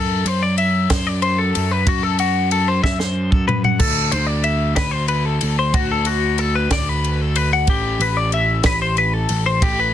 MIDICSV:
0, 0, Header, 1, 4, 480
1, 0, Start_track
1, 0, Tempo, 645856
1, 1388, Time_signature, 6, 3, 24, 8
1, 7384, End_track
2, 0, Start_track
2, 0, Title_t, "Clean electric guitar"
2, 0, Program_c, 0, 27
2, 0, Note_on_c, 0, 69, 100
2, 202, Note_off_c, 0, 69, 0
2, 202, Note_on_c, 0, 72, 90
2, 315, Note_off_c, 0, 72, 0
2, 317, Note_on_c, 0, 74, 81
2, 429, Note_off_c, 0, 74, 0
2, 432, Note_on_c, 0, 76, 76
2, 682, Note_off_c, 0, 76, 0
2, 682, Note_on_c, 0, 72, 89
2, 794, Note_off_c, 0, 72, 0
2, 794, Note_on_c, 0, 74, 77
2, 907, Note_off_c, 0, 74, 0
2, 910, Note_on_c, 0, 72, 71
2, 1029, Note_off_c, 0, 72, 0
2, 1029, Note_on_c, 0, 69, 67
2, 1274, Note_off_c, 0, 69, 0
2, 1274, Note_on_c, 0, 71, 75
2, 1391, Note_off_c, 0, 71, 0
2, 1401, Note_on_c, 0, 66, 100
2, 1510, Note_off_c, 0, 66, 0
2, 1510, Note_on_c, 0, 69, 78
2, 1629, Note_off_c, 0, 69, 0
2, 1633, Note_on_c, 0, 66, 81
2, 1870, Note_off_c, 0, 66, 0
2, 1873, Note_on_c, 0, 69, 78
2, 1991, Note_off_c, 0, 69, 0
2, 1993, Note_on_c, 0, 72, 80
2, 2104, Note_off_c, 0, 72, 0
2, 2107, Note_on_c, 0, 76, 82
2, 2224, Note_off_c, 0, 76, 0
2, 2224, Note_on_c, 0, 72, 69
2, 2459, Note_off_c, 0, 72, 0
2, 2459, Note_on_c, 0, 69, 71
2, 2582, Note_off_c, 0, 69, 0
2, 2585, Note_on_c, 0, 71, 73
2, 2707, Note_off_c, 0, 71, 0
2, 2710, Note_on_c, 0, 78, 79
2, 2820, Note_on_c, 0, 69, 98
2, 2829, Note_off_c, 0, 78, 0
2, 3058, Note_off_c, 0, 69, 0
2, 3058, Note_on_c, 0, 72, 79
2, 3170, Note_off_c, 0, 72, 0
2, 3170, Note_on_c, 0, 74, 72
2, 3299, Note_off_c, 0, 74, 0
2, 3299, Note_on_c, 0, 76, 69
2, 3535, Note_off_c, 0, 76, 0
2, 3538, Note_on_c, 0, 71, 90
2, 3652, Note_off_c, 0, 71, 0
2, 3652, Note_on_c, 0, 72, 77
2, 3777, Note_off_c, 0, 72, 0
2, 3780, Note_on_c, 0, 71, 74
2, 3905, Note_off_c, 0, 71, 0
2, 3905, Note_on_c, 0, 69, 71
2, 4146, Note_off_c, 0, 69, 0
2, 4154, Note_on_c, 0, 72, 79
2, 4268, Note_on_c, 0, 66, 96
2, 4271, Note_off_c, 0, 72, 0
2, 4388, Note_off_c, 0, 66, 0
2, 4396, Note_on_c, 0, 69, 76
2, 4508, Note_on_c, 0, 66, 82
2, 4512, Note_off_c, 0, 69, 0
2, 4748, Note_off_c, 0, 66, 0
2, 4748, Note_on_c, 0, 69, 75
2, 4867, Note_off_c, 0, 69, 0
2, 4872, Note_on_c, 0, 71, 84
2, 4989, Note_off_c, 0, 71, 0
2, 4997, Note_on_c, 0, 74, 89
2, 5123, Note_off_c, 0, 74, 0
2, 5123, Note_on_c, 0, 71, 75
2, 5363, Note_off_c, 0, 71, 0
2, 5363, Note_on_c, 0, 69, 74
2, 5472, Note_off_c, 0, 69, 0
2, 5472, Note_on_c, 0, 71, 75
2, 5589, Note_off_c, 0, 71, 0
2, 5598, Note_on_c, 0, 78, 86
2, 5712, Note_off_c, 0, 78, 0
2, 5718, Note_on_c, 0, 67, 92
2, 5952, Note_off_c, 0, 67, 0
2, 5957, Note_on_c, 0, 71, 72
2, 6071, Note_off_c, 0, 71, 0
2, 6071, Note_on_c, 0, 74, 78
2, 6189, Note_off_c, 0, 74, 0
2, 6196, Note_on_c, 0, 76, 80
2, 6431, Note_off_c, 0, 76, 0
2, 6435, Note_on_c, 0, 71, 83
2, 6551, Note_off_c, 0, 71, 0
2, 6554, Note_on_c, 0, 72, 75
2, 6670, Note_off_c, 0, 72, 0
2, 6675, Note_on_c, 0, 71, 82
2, 6790, Note_off_c, 0, 71, 0
2, 6790, Note_on_c, 0, 69, 68
2, 7028, Note_off_c, 0, 69, 0
2, 7032, Note_on_c, 0, 72, 76
2, 7149, Note_off_c, 0, 72, 0
2, 7154, Note_on_c, 0, 67, 94
2, 7270, Note_off_c, 0, 67, 0
2, 7280, Note_on_c, 0, 71, 79
2, 7384, Note_off_c, 0, 71, 0
2, 7384, End_track
3, 0, Start_track
3, 0, Title_t, "Picked electric bass"
3, 0, Program_c, 1, 34
3, 0, Note_on_c, 1, 42, 112
3, 175, Note_off_c, 1, 42, 0
3, 189, Note_on_c, 1, 42, 92
3, 641, Note_off_c, 1, 42, 0
3, 674, Note_on_c, 1, 42, 104
3, 1124, Note_off_c, 1, 42, 0
3, 1164, Note_on_c, 1, 42, 85
3, 1383, Note_off_c, 1, 42, 0
3, 1390, Note_on_c, 1, 42, 105
3, 2080, Note_off_c, 1, 42, 0
3, 2109, Note_on_c, 1, 42, 105
3, 2819, Note_off_c, 1, 42, 0
3, 2819, Note_on_c, 1, 38, 106
3, 3050, Note_off_c, 1, 38, 0
3, 3067, Note_on_c, 1, 38, 101
3, 3520, Note_off_c, 1, 38, 0
3, 4034, Note_on_c, 1, 38, 83
3, 4257, Note_off_c, 1, 38, 0
3, 4267, Note_on_c, 1, 38, 117
3, 4957, Note_off_c, 1, 38, 0
3, 5703, Note_on_c, 1, 33, 106
3, 5931, Note_off_c, 1, 33, 0
3, 5942, Note_on_c, 1, 33, 107
3, 6396, Note_off_c, 1, 33, 0
3, 6423, Note_on_c, 1, 33, 107
3, 6877, Note_off_c, 1, 33, 0
3, 6913, Note_on_c, 1, 33, 90
3, 7136, Note_off_c, 1, 33, 0
3, 7154, Note_on_c, 1, 33, 103
3, 7384, Note_off_c, 1, 33, 0
3, 7384, End_track
4, 0, Start_track
4, 0, Title_t, "Drums"
4, 192, Note_on_c, 9, 51, 87
4, 266, Note_off_c, 9, 51, 0
4, 428, Note_on_c, 9, 51, 87
4, 502, Note_off_c, 9, 51, 0
4, 668, Note_on_c, 9, 51, 115
4, 670, Note_on_c, 9, 36, 90
4, 671, Note_on_c, 9, 38, 122
4, 743, Note_off_c, 9, 51, 0
4, 744, Note_off_c, 9, 36, 0
4, 745, Note_off_c, 9, 38, 0
4, 907, Note_on_c, 9, 51, 79
4, 982, Note_off_c, 9, 51, 0
4, 1152, Note_on_c, 9, 51, 88
4, 1227, Note_off_c, 9, 51, 0
4, 1387, Note_on_c, 9, 51, 111
4, 1388, Note_on_c, 9, 36, 125
4, 1461, Note_off_c, 9, 51, 0
4, 1463, Note_off_c, 9, 36, 0
4, 1625, Note_on_c, 9, 51, 74
4, 1699, Note_off_c, 9, 51, 0
4, 1867, Note_on_c, 9, 51, 85
4, 1941, Note_off_c, 9, 51, 0
4, 2108, Note_on_c, 9, 36, 78
4, 2116, Note_on_c, 9, 38, 74
4, 2182, Note_off_c, 9, 36, 0
4, 2190, Note_off_c, 9, 38, 0
4, 2229, Note_on_c, 9, 38, 63
4, 2303, Note_off_c, 9, 38, 0
4, 2468, Note_on_c, 9, 36, 80
4, 2542, Note_off_c, 9, 36, 0
4, 2592, Note_on_c, 9, 43, 118
4, 2666, Note_off_c, 9, 43, 0
4, 2708, Note_on_c, 9, 43, 97
4, 2782, Note_off_c, 9, 43, 0
4, 2820, Note_on_c, 9, 49, 119
4, 2824, Note_on_c, 9, 36, 112
4, 2894, Note_off_c, 9, 49, 0
4, 2898, Note_off_c, 9, 36, 0
4, 3062, Note_on_c, 9, 51, 88
4, 3136, Note_off_c, 9, 51, 0
4, 3297, Note_on_c, 9, 51, 84
4, 3371, Note_off_c, 9, 51, 0
4, 3540, Note_on_c, 9, 51, 118
4, 3542, Note_on_c, 9, 36, 81
4, 3542, Note_on_c, 9, 38, 120
4, 3614, Note_off_c, 9, 51, 0
4, 3616, Note_off_c, 9, 36, 0
4, 3616, Note_off_c, 9, 38, 0
4, 3776, Note_on_c, 9, 51, 84
4, 3851, Note_off_c, 9, 51, 0
4, 4019, Note_on_c, 9, 51, 95
4, 4094, Note_off_c, 9, 51, 0
4, 4264, Note_on_c, 9, 51, 102
4, 4265, Note_on_c, 9, 36, 123
4, 4339, Note_off_c, 9, 51, 0
4, 4340, Note_off_c, 9, 36, 0
4, 4496, Note_on_c, 9, 51, 86
4, 4570, Note_off_c, 9, 51, 0
4, 4741, Note_on_c, 9, 51, 83
4, 4815, Note_off_c, 9, 51, 0
4, 4984, Note_on_c, 9, 51, 121
4, 4986, Note_on_c, 9, 36, 90
4, 4987, Note_on_c, 9, 38, 114
4, 5059, Note_off_c, 9, 51, 0
4, 5060, Note_off_c, 9, 36, 0
4, 5061, Note_off_c, 9, 38, 0
4, 5234, Note_on_c, 9, 51, 74
4, 5309, Note_off_c, 9, 51, 0
4, 5466, Note_on_c, 9, 51, 84
4, 5541, Note_off_c, 9, 51, 0
4, 5702, Note_on_c, 9, 51, 102
4, 5706, Note_on_c, 9, 36, 111
4, 5776, Note_off_c, 9, 51, 0
4, 5780, Note_off_c, 9, 36, 0
4, 5950, Note_on_c, 9, 51, 74
4, 6024, Note_off_c, 9, 51, 0
4, 6184, Note_on_c, 9, 51, 77
4, 6259, Note_off_c, 9, 51, 0
4, 6417, Note_on_c, 9, 51, 106
4, 6420, Note_on_c, 9, 38, 127
4, 6425, Note_on_c, 9, 36, 88
4, 6492, Note_off_c, 9, 51, 0
4, 6494, Note_off_c, 9, 38, 0
4, 6499, Note_off_c, 9, 36, 0
4, 6665, Note_on_c, 9, 51, 72
4, 6739, Note_off_c, 9, 51, 0
4, 6903, Note_on_c, 9, 51, 84
4, 6977, Note_off_c, 9, 51, 0
4, 7150, Note_on_c, 9, 36, 114
4, 7150, Note_on_c, 9, 51, 110
4, 7224, Note_off_c, 9, 36, 0
4, 7225, Note_off_c, 9, 51, 0
4, 7384, End_track
0, 0, End_of_file